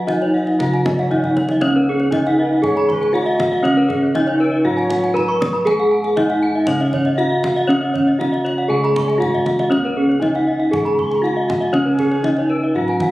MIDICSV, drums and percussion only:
0, 0, Header, 1, 2, 480
1, 0, Start_track
1, 0, Tempo, 516351
1, 1506, Time_signature, 4, 2, 24, 8
1, 1506, Tempo, 505476
1, 12418, End_track
2, 0, Start_track
2, 0, Title_t, "Kendang"
2, 79, Note_on_c, 9, 63, 43
2, 172, Note_off_c, 9, 63, 0
2, 201, Note_on_c, 9, 62, 16
2, 294, Note_off_c, 9, 62, 0
2, 437, Note_on_c, 9, 62, 17
2, 530, Note_off_c, 9, 62, 0
2, 558, Note_on_c, 9, 64, 61
2, 651, Note_off_c, 9, 64, 0
2, 684, Note_on_c, 9, 62, 17
2, 777, Note_off_c, 9, 62, 0
2, 797, Note_on_c, 9, 63, 53
2, 797, Note_on_c, 9, 64, 43
2, 890, Note_off_c, 9, 63, 0
2, 890, Note_off_c, 9, 64, 0
2, 920, Note_on_c, 9, 64, 36
2, 1013, Note_off_c, 9, 64, 0
2, 1035, Note_on_c, 9, 64, 35
2, 1128, Note_off_c, 9, 64, 0
2, 1150, Note_on_c, 9, 64, 44
2, 1243, Note_off_c, 9, 64, 0
2, 1271, Note_on_c, 9, 63, 45
2, 1364, Note_off_c, 9, 63, 0
2, 1381, Note_on_c, 9, 63, 40
2, 1474, Note_off_c, 9, 63, 0
2, 1499, Note_on_c, 9, 63, 43
2, 1594, Note_off_c, 9, 63, 0
2, 1864, Note_on_c, 9, 62, 20
2, 1959, Note_off_c, 9, 62, 0
2, 1983, Note_on_c, 9, 62, 23
2, 1983, Note_on_c, 9, 63, 50
2, 1983, Note_on_c, 9, 64, 44
2, 2078, Note_off_c, 9, 62, 0
2, 2078, Note_off_c, 9, 63, 0
2, 2078, Note_off_c, 9, 64, 0
2, 2118, Note_on_c, 9, 62, 21
2, 2213, Note_off_c, 9, 62, 0
2, 2470, Note_on_c, 9, 64, 64
2, 2565, Note_off_c, 9, 64, 0
2, 2598, Note_on_c, 9, 62, 22
2, 2692, Note_off_c, 9, 62, 0
2, 2719, Note_on_c, 9, 64, 52
2, 2814, Note_off_c, 9, 64, 0
2, 2844, Note_on_c, 9, 62, 24
2, 2939, Note_off_c, 9, 62, 0
2, 2962, Note_on_c, 9, 62, 22
2, 3057, Note_off_c, 9, 62, 0
2, 3193, Note_on_c, 9, 62, 20
2, 3193, Note_on_c, 9, 63, 61
2, 3193, Note_on_c, 9, 64, 52
2, 3288, Note_off_c, 9, 62, 0
2, 3288, Note_off_c, 9, 63, 0
2, 3288, Note_off_c, 9, 64, 0
2, 3322, Note_on_c, 9, 62, 15
2, 3417, Note_off_c, 9, 62, 0
2, 3435, Note_on_c, 9, 63, 40
2, 3530, Note_off_c, 9, 63, 0
2, 3671, Note_on_c, 9, 64, 62
2, 3766, Note_off_c, 9, 64, 0
2, 3910, Note_on_c, 9, 62, 18
2, 3910, Note_on_c, 9, 63, 55
2, 4005, Note_off_c, 9, 62, 0
2, 4005, Note_off_c, 9, 63, 0
2, 4027, Note_on_c, 9, 62, 20
2, 4122, Note_off_c, 9, 62, 0
2, 4509, Note_on_c, 9, 62, 22
2, 4604, Note_off_c, 9, 62, 0
2, 4625, Note_on_c, 9, 64, 74
2, 4720, Note_off_c, 9, 64, 0
2, 4752, Note_on_c, 9, 62, 24
2, 4847, Note_off_c, 9, 62, 0
2, 4874, Note_on_c, 9, 62, 20
2, 4874, Note_on_c, 9, 64, 50
2, 4969, Note_off_c, 9, 62, 0
2, 4969, Note_off_c, 9, 64, 0
2, 5113, Note_on_c, 9, 62, 22
2, 5113, Note_on_c, 9, 63, 58
2, 5113, Note_on_c, 9, 64, 51
2, 5208, Note_off_c, 9, 62, 0
2, 5208, Note_off_c, 9, 63, 0
2, 5208, Note_off_c, 9, 64, 0
2, 5238, Note_on_c, 9, 62, 19
2, 5333, Note_off_c, 9, 62, 0
2, 5351, Note_on_c, 9, 63, 45
2, 5446, Note_off_c, 9, 63, 0
2, 5705, Note_on_c, 9, 62, 18
2, 5800, Note_off_c, 9, 62, 0
2, 5827, Note_on_c, 9, 62, 23
2, 5827, Note_on_c, 9, 63, 53
2, 5827, Note_on_c, 9, 64, 58
2, 5922, Note_off_c, 9, 62, 0
2, 5922, Note_off_c, 9, 63, 0
2, 5922, Note_off_c, 9, 64, 0
2, 5946, Note_on_c, 9, 62, 18
2, 6041, Note_off_c, 9, 62, 0
2, 6299, Note_on_c, 9, 64, 78
2, 6394, Note_off_c, 9, 64, 0
2, 6426, Note_on_c, 9, 62, 24
2, 6521, Note_off_c, 9, 62, 0
2, 6547, Note_on_c, 9, 64, 56
2, 6642, Note_off_c, 9, 64, 0
2, 6663, Note_on_c, 9, 62, 23
2, 6758, Note_off_c, 9, 62, 0
2, 6795, Note_on_c, 9, 62, 21
2, 6890, Note_off_c, 9, 62, 0
2, 7031, Note_on_c, 9, 62, 23
2, 7031, Note_on_c, 9, 63, 57
2, 7031, Note_on_c, 9, 64, 56
2, 7126, Note_off_c, 9, 62, 0
2, 7126, Note_off_c, 9, 63, 0
2, 7126, Note_off_c, 9, 64, 0
2, 7161, Note_on_c, 9, 62, 19
2, 7255, Note_off_c, 9, 62, 0
2, 7282, Note_on_c, 9, 63, 44
2, 7377, Note_off_c, 9, 63, 0
2, 7521, Note_on_c, 9, 64, 60
2, 7616, Note_off_c, 9, 64, 0
2, 7639, Note_on_c, 9, 62, 17
2, 7734, Note_off_c, 9, 62, 0
2, 7763, Note_on_c, 9, 62, 23
2, 7763, Note_on_c, 9, 63, 48
2, 7858, Note_off_c, 9, 62, 0
2, 7858, Note_off_c, 9, 63, 0
2, 7886, Note_on_c, 9, 62, 21
2, 7981, Note_off_c, 9, 62, 0
2, 8004, Note_on_c, 9, 62, 21
2, 8099, Note_off_c, 9, 62, 0
2, 8368, Note_on_c, 9, 62, 22
2, 8463, Note_off_c, 9, 62, 0
2, 8478, Note_on_c, 9, 62, 22
2, 8478, Note_on_c, 9, 64, 66
2, 8573, Note_off_c, 9, 62, 0
2, 8573, Note_off_c, 9, 64, 0
2, 8605, Note_on_c, 9, 62, 23
2, 8700, Note_off_c, 9, 62, 0
2, 8723, Note_on_c, 9, 62, 26
2, 8723, Note_on_c, 9, 64, 58
2, 8818, Note_off_c, 9, 62, 0
2, 8818, Note_off_c, 9, 64, 0
2, 8842, Note_on_c, 9, 64, 39
2, 8937, Note_off_c, 9, 64, 0
2, 8952, Note_on_c, 9, 63, 47
2, 9047, Note_off_c, 9, 63, 0
2, 9076, Note_on_c, 9, 63, 39
2, 9171, Note_off_c, 9, 63, 0
2, 9196, Note_on_c, 9, 63, 32
2, 9291, Note_off_c, 9, 63, 0
2, 9572, Note_on_c, 9, 62, 16
2, 9667, Note_off_c, 9, 62, 0
2, 9675, Note_on_c, 9, 62, 17
2, 9675, Note_on_c, 9, 63, 48
2, 9675, Note_on_c, 9, 64, 44
2, 9770, Note_off_c, 9, 62, 0
2, 9770, Note_off_c, 9, 63, 0
2, 9770, Note_off_c, 9, 64, 0
2, 9796, Note_on_c, 9, 62, 19
2, 9891, Note_off_c, 9, 62, 0
2, 10160, Note_on_c, 9, 64, 70
2, 10255, Note_off_c, 9, 64, 0
2, 10280, Note_on_c, 9, 62, 20
2, 10375, Note_off_c, 9, 62, 0
2, 10402, Note_on_c, 9, 64, 42
2, 10497, Note_off_c, 9, 64, 0
2, 10523, Note_on_c, 9, 62, 22
2, 10618, Note_off_c, 9, 62, 0
2, 10655, Note_on_c, 9, 62, 19
2, 10750, Note_off_c, 9, 62, 0
2, 10886, Note_on_c, 9, 62, 20
2, 10886, Note_on_c, 9, 63, 52
2, 10886, Note_on_c, 9, 64, 53
2, 10981, Note_off_c, 9, 62, 0
2, 10981, Note_off_c, 9, 63, 0
2, 10981, Note_off_c, 9, 64, 0
2, 11003, Note_on_c, 9, 62, 18
2, 11098, Note_off_c, 9, 62, 0
2, 11112, Note_on_c, 9, 63, 41
2, 11207, Note_off_c, 9, 63, 0
2, 11350, Note_on_c, 9, 64, 49
2, 11445, Note_off_c, 9, 64, 0
2, 11473, Note_on_c, 9, 62, 20
2, 11568, Note_off_c, 9, 62, 0
2, 11592, Note_on_c, 9, 62, 21
2, 11592, Note_on_c, 9, 63, 44
2, 11687, Note_off_c, 9, 62, 0
2, 11687, Note_off_c, 9, 63, 0
2, 11710, Note_on_c, 9, 62, 20
2, 11805, Note_off_c, 9, 62, 0
2, 12198, Note_on_c, 9, 62, 19
2, 12293, Note_off_c, 9, 62, 0
2, 12314, Note_on_c, 9, 64, 74
2, 12409, Note_off_c, 9, 64, 0
2, 12418, End_track
0, 0, End_of_file